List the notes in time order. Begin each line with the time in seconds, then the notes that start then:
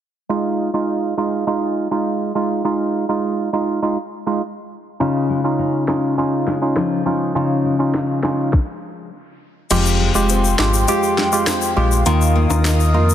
0.29 G#3 D#4 F4
0.74 G#3 D#4 F4
1.17 G#3 D#4 F4
1.47 G#3 D#4 F4
1.91 G#3 D#4 F4
2.35 G#3 D#4 F4
2.64 G#3 D#4 F4
3.09 G#3 D#4 F4
3.53 G#3 D#4 F4
3.82 G#3 D#4 F4
4.27 G#3 D#4 F4
5.00 C#3 C#4 D#4 F4
5.30 G#3
5.44 C#4 D#4 F4
5.59 D#4
5.88 G#3 C#4 D#4 F4, snare
6.18 C#4 D#4 F4
6.47 G#3, snare
6.62 C#4 D#4 F4
6.76 F3, cross-stick, snare
7.06 G#3 C#4 D#4 F4
7.35 C#3 C#4 D#4 F4
7.65 G#3
7.79 C#4 D#4 F4
7.94 D#4, snare
8.23 G#3 C#4 D#4 F4, snare
8.53 kick, snare
9.70 F1 F2 G#3 F4 G4 F5 G5 C6, closed hi-hat, crash, shaker
9.86 shaker
10.00 G#3
10.15 F1 G#3 F4 G4, shaker
10.29 C4, closed hi-hat, shaker
10.44 shaker
10.59 G#1 G#3 F4 G4, snare
10.74 shaker
10.88 G#3 F4 G4, closed hi-hat, shaker
11.03 shaker
11.18 G#3, snare
11.32 G#3 F4 G4, shaker
11.47 C4, cross-stick, snare, closed hi-hat, shaker
11.62 shaker
11.76 A#1 G#3 F4 G4
11.92 shaker
12.06 D#2 D#3 A#3 D#4 F4 A#4 D#5 D#6, closed hi-hat, shaker
12.21 shaker
12.35 A#3
12.50 D#2 A#3 D#4 F4, high timbale, shaker
12.65 D#4, snare, closed hi-hat, shaker
12.80 shaker
12.94 F2 A#3 D#4 F4
13.09 shaker